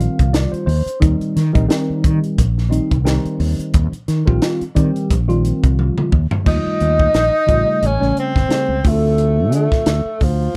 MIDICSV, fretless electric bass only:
0, 0, Header, 1, 3, 480
1, 0, Start_track
1, 0, Tempo, 680272
1, 718, Time_signature, 4, 2, 24, 8
1, 7454, End_track
2, 0, Start_track
2, 0, Title_t, "Fretless electric bass"
2, 0, Program_c, 0, 35
2, 137, Note_on_c, 0, 36, 81
2, 318, Note_off_c, 0, 36, 0
2, 472, Note_on_c, 0, 39, 91
2, 577, Note_off_c, 0, 39, 0
2, 720, Note_on_c, 0, 39, 92
2, 821, Note_off_c, 0, 39, 0
2, 962, Note_on_c, 0, 51, 74
2, 1062, Note_off_c, 0, 51, 0
2, 1094, Note_on_c, 0, 34, 89
2, 1173, Note_off_c, 0, 34, 0
2, 1442, Note_on_c, 0, 51, 78
2, 1542, Note_off_c, 0, 51, 0
2, 1680, Note_on_c, 0, 34, 87
2, 1963, Note_off_c, 0, 34, 0
2, 2059, Note_on_c, 0, 36, 83
2, 2238, Note_off_c, 0, 36, 0
2, 2397, Note_on_c, 0, 39, 88
2, 2498, Note_off_c, 0, 39, 0
2, 2639, Note_on_c, 0, 39, 91
2, 2739, Note_off_c, 0, 39, 0
2, 2880, Note_on_c, 0, 51, 75
2, 2980, Note_off_c, 0, 51, 0
2, 3015, Note_on_c, 0, 34, 90
2, 3093, Note_off_c, 0, 34, 0
2, 3361, Note_on_c, 0, 51, 77
2, 3461, Note_off_c, 0, 51, 0
2, 3604, Note_on_c, 0, 34, 91
2, 3885, Note_off_c, 0, 34, 0
2, 3976, Note_on_c, 0, 36, 83
2, 4156, Note_off_c, 0, 36, 0
2, 4323, Note_on_c, 0, 39, 84
2, 4422, Note_off_c, 0, 39, 0
2, 4560, Note_on_c, 0, 39, 95
2, 4660, Note_off_c, 0, 39, 0
2, 4806, Note_on_c, 0, 39, 78
2, 4985, Note_off_c, 0, 39, 0
2, 5042, Note_on_c, 0, 34, 76
2, 5142, Note_off_c, 0, 34, 0
2, 5282, Note_on_c, 0, 33, 66
2, 5382, Note_off_c, 0, 33, 0
2, 5522, Note_on_c, 0, 33, 89
2, 5622, Note_off_c, 0, 33, 0
2, 5657, Note_on_c, 0, 33, 80
2, 5736, Note_off_c, 0, 33, 0
2, 5897, Note_on_c, 0, 31, 77
2, 5976, Note_off_c, 0, 31, 0
2, 6128, Note_on_c, 0, 37, 63
2, 6210, Note_off_c, 0, 37, 0
2, 6241, Note_on_c, 0, 38, 79
2, 6715, Note_off_c, 0, 38, 0
2, 6715, Note_on_c, 0, 50, 66
2, 6819, Note_off_c, 0, 50, 0
2, 6958, Note_on_c, 0, 38, 84
2, 7061, Note_off_c, 0, 38, 0
2, 7205, Note_on_c, 0, 38, 58
2, 7387, Note_off_c, 0, 38, 0
2, 7454, End_track
3, 0, Start_track
3, 0, Title_t, "Muted fretless electric bass strokes"
3, 373, Note_on_c, 9, 29, 35
3, 444, Note_off_c, 9, 29, 0
3, 608, Note_on_c, 9, 29, 38
3, 678, Note_off_c, 9, 29, 0
3, 847, Note_on_c, 9, 29, 35
3, 918, Note_off_c, 9, 29, 0
3, 1340, Note_on_c, 9, 29, 30
3, 1410, Note_off_c, 9, 29, 0
3, 2296, Note_on_c, 9, 29, 40
3, 2366, Note_off_c, 9, 29, 0
3, 2533, Note_on_c, 9, 29, 39
3, 2604, Note_off_c, 9, 29, 0
3, 2767, Note_on_c, 9, 29, 35
3, 2838, Note_off_c, 9, 29, 0
3, 3255, Note_on_c, 9, 29, 33
3, 3326, Note_off_c, 9, 29, 0
3, 4223, Note_on_c, 9, 29, 32
3, 4294, Note_off_c, 9, 29, 0
3, 4698, Note_on_c, 9, 29, 30
3, 4769, Note_off_c, 9, 29, 0
3, 7094, Note_on_c, 9, 29, 29
3, 7165, Note_off_c, 9, 29, 0
3, 7454, End_track
0, 0, End_of_file